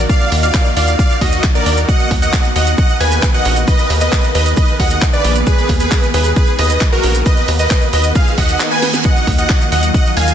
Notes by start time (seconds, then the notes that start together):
0.09 D5 F5, kick, closed hi-hat, maracas
0.21 maracas
0.32 D#2, open hi-hat
0.43 D5 F5, closed hi-hat, maracas
0.54 kick, clap, closed hi-hat, maracas
0.65 maracas
0.76 D#2 D5 F5, open hi-hat
0.88 closed hi-hat, maracas
0.99 D5 F5, kick, closed hi-hat, maracas
1.11 maracas
1.21 D#2 F#4 D#5, kick, open hi-hat
1.32 closed hi-hat, maracas
1.43 kick, clap, closed hi-hat, maracas
1.55 A#4 D5, maracas
1.66 D#2, open hi-hat
1.77 closed hi-hat, maracas
1.88 D#5 F#5, kick, closed hi-hat, maracas
1.99 maracas
2.11 D#2, kick, open hi-hat
2.22 D#5 F#5, closed hi-hat, maracas
2.33 kick, clap, closed hi-hat, maracas
2.44 maracas
2.56 D#2 D#5 F#5, open hi-hat
2.67 closed hi-hat, maracas
2.78 D#5 F#5, kick, closed hi-hat, maracas
2.89 maracas
3.00 D#2 B4 G#5, open hi-hat
3.12 closed hi-hat, maracas
3.23 kick, clap, closed hi-hat, maracas
3.34 D#5 F#5, maracas
3.45 A#1, open hi-hat
3.56 closed hi-hat, maracas
3.68 B4 D#5, kick, closed hi-hat, maracas
3.78 maracas
3.90 D#2, open hi-hat
4.01 B4 D#5, closed hi-hat, maracas
4.12 kick, clap, closed hi-hat, maracas
4.24 maracas
4.35 D#2 B4 D#5, open hi-hat
4.46 closed hi-hat, maracas
4.57 B4 D#5, kick, closed hi-hat, maracas
4.68 maracas
4.80 D#2 D#5 F#5, kick, open hi-hat
4.90 closed hi-hat, maracas
5.01 kick, clap, closed hi-hat, maracas
5.13 B4 D5, maracas
5.24 A#1, open hi-hat
5.36 closed hi-hat, maracas
5.47 G#4 B4, kick, closed hi-hat, maracas
5.58 maracas
5.69 D#2, kick, open hi-hat
5.80 G#4 B4, closed hi-hat, maracas
5.91 kick, clap, closed hi-hat, maracas
6.03 maracas
6.14 D#2 G#4 B4, open hi-hat
6.24 closed hi-hat, maracas
6.36 G#4 B4, kick, closed hi-hat, maracas
6.47 maracas
6.59 D#2 B4 D#5, open hi-hat
6.70 closed hi-hat, maracas
6.81 kick, clap, closed hi-hat, maracas
6.92 F#4 A#4, maracas
7.03 A#1, open hi-hat
7.15 closed hi-hat, maracas
7.26 B4 D#5, kick, closed hi-hat, maracas
7.37 maracas
7.48 D#2, open hi-hat
7.59 B4 D#5, closed hi-hat, maracas
7.70 kick, clap, closed hi-hat, maracas
7.82 maracas
7.93 D#2 B4 D#5, open hi-hat
8.04 closed hi-hat, maracas
8.15 G#4 F5, kick, closed hi-hat, reverse cymbal, maracas
8.27 maracas
8.38 D#2 D#5 F#5, kick, open hi-hat
8.49 closed hi-hat, maracas
8.60 clap, closed hi-hat, maracas
8.71 B4 G#5, maracas
8.82 snare, open hi-hat
8.94 snare, closed hi-hat, maracas
9.05 D#5 F#5, kick, closed hi-hat, maracas
9.17 maracas
9.27 D#2, kick, open hi-hat
9.38 D#5 F#5, closed hi-hat, maracas
9.50 kick, clap, closed hi-hat, maracas
9.61 maracas
9.72 D#2 D#5 F#5, open hi-hat
9.83 closed hi-hat, maracas
9.94 D#5 F#5, kick, closed hi-hat, maracas
10.06 maracas
10.17 D#2 F5 G#5, open hi-hat
10.28 closed hi-hat, maracas